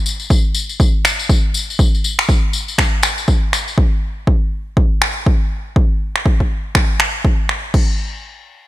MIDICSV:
0, 0, Header, 1, 2, 480
1, 0, Start_track
1, 0, Tempo, 495868
1, 1733, Time_signature, 4, 2, 24, 8
1, 8399, End_track
2, 0, Start_track
2, 0, Title_t, "Drums"
2, 56, Note_on_c, 9, 54, 93
2, 153, Note_off_c, 9, 54, 0
2, 190, Note_on_c, 9, 54, 37
2, 287, Note_off_c, 9, 54, 0
2, 293, Note_on_c, 9, 36, 112
2, 295, Note_on_c, 9, 54, 54
2, 390, Note_off_c, 9, 36, 0
2, 392, Note_off_c, 9, 54, 0
2, 528, Note_on_c, 9, 54, 84
2, 625, Note_off_c, 9, 54, 0
2, 671, Note_on_c, 9, 54, 40
2, 768, Note_off_c, 9, 54, 0
2, 773, Note_on_c, 9, 36, 107
2, 777, Note_on_c, 9, 54, 54
2, 869, Note_off_c, 9, 36, 0
2, 874, Note_off_c, 9, 54, 0
2, 1013, Note_on_c, 9, 54, 86
2, 1015, Note_on_c, 9, 26, 83
2, 1109, Note_off_c, 9, 54, 0
2, 1112, Note_off_c, 9, 26, 0
2, 1155, Note_on_c, 9, 54, 41
2, 1252, Note_off_c, 9, 54, 0
2, 1253, Note_on_c, 9, 36, 104
2, 1253, Note_on_c, 9, 54, 51
2, 1350, Note_off_c, 9, 36, 0
2, 1350, Note_off_c, 9, 54, 0
2, 1493, Note_on_c, 9, 54, 94
2, 1590, Note_off_c, 9, 54, 0
2, 1646, Note_on_c, 9, 54, 36
2, 1734, Note_on_c, 9, 36, 106
2, 1735, Note_off_c, 9, 54, 0
2, 1735, Note_on_c, 9, 54, 51
2, 1830, Note_off_c, 9, 36, 0
2, 1832, Note_off_c, 9, 54, 0
2, 1883, Note_on_c, 9, 54, 30
2, 1977, Note_off_c, 9, 54, 0
2, 1977, Note_on_c, 9, 54, 76
2, 2074, Note_off_c, 9, 54, 0
2, 2118, Note_on_c, 9, 26, 73
2, 2125, Note_on_c, 9, 54, 36
2, 2214, Note_on_c, 9, 36, 107
2, 2215, Note_off_c, 9, 26, 0
2, 2218, Note_off_c, 9, 54, 0
2, 2218, Note_on_c, 9, 54, 44
2, 2311, Note_off_c, 9, 36, 0
2, 2315, Note_off_c, 9, 54, 0
2, 2452, Note_on_c, 9, 54, 73
2, 2549, Note_off_c, 9, 54, 0
2, 2597, Note_on_c, 9, 54, 38
2, 2692, Note_off_c, 9, 54, 0
2, 2692, Note_on_c, 9, 54, 46
2, 2694, Note_on_c, 9, 36, 104
2, 2696, Note_on_c, 9, 26, 76
2, 2789, Note_off_c, 9, 54, 0
2, 2791, Note_off_c, 9, 36, 0
2, 2793, Note_off_c, 9, 26, 0
2, 2929, Note_on_c, 9, 54, 79
2, 2936, Note_on_c, 9, 26, 82
2, 3026, Note_off_c, 9, 54, 0
2, 3032, Note_off_c, 9, 26, 0
2, 3077, Note_on_c, 9, 54, 38
2, 3172, Note_off_c, 9, 54, 0
2, 3172, Note_on_c, 9, 54, 44
2, 3175, Note_on_c, 9, 36, 106
2, 3269, Note_off_c, 9, 54, 0
2, 3272, Note_off_c, 9, 36, 0
2, 3418, Note_on_c, 9, 26, 76
2, 3424, Note_on_c, 9, 54, 82
2, 3515, Note_off_c, 9, 26, 0
2, 3521, Note_off_c, 9, 54, 0
2, 3560, Note_on_c, 9, 54, 34
2, 3656, Note_on_c, 9, 36, 106
2, 3657, Note_off_c, 9, 54, 0
2, 3753, Note_off_c, 9, 36, 0
2, 4136, Note_on_c, 9, 36, 100
2, 4233, Note_off_c, 9, 36, 0
2, 4616, Note_on_c, 9, 36, 106
2, 4713, Note_off_c, 9, 36, 0
2, 4856, Note_on_c, 9, 26, 82
2, 4953, Note_off_c, 9, 26, 0
2, 5096, Note_on_c, 9, 36, 104
2, 5193, Note_off_c, 9, 36, 0
2, 5577, Note_on_c, 9, 36, 105
2, 5673, Note_off_c, 9, 36, 0
2, 5959, Note_on_c, 9, 26, 72
2, 6056, Note_off_c, 9, 26, 0
2, 6056, Note_on_c, 9, 36, 104
2, 6153, Note_off_c, 9, 36, 0
2, 6198, Note_on_c, 9, 36, 53
2, 6295, Note_off_c, 9, 36, 0
2, 6534, Note_on_c, 9, 26, 77
2, 6535, Note_on_c, 9, 36, 103
2, 6630, Note_off_c, 9, 26, 0
2, 6632, Note_off_c, 9, 36, 0
2, 6773, Note_on_c, 9, 26, 83
2, 6870, Note_off_c, 9, 26, 0
2, 7014, Note_on_c, 9, 36, 100
2, 7111, Note_off_c, 9, 36, 0
2, 7252, Note_on_c, 9, 26, 72
2, 7349, Note_off_c, 9, 26, 0
2, 7492, Note_on_c, 9, 36, 104
2, 7492, Note_on_c, 9, 49, 78
2, 7589, Note_off_c, 9, 36, 0
2, 7589, Note_off_c, 9, 49, 0
2, 8399, End_track
0, 0, End_of_file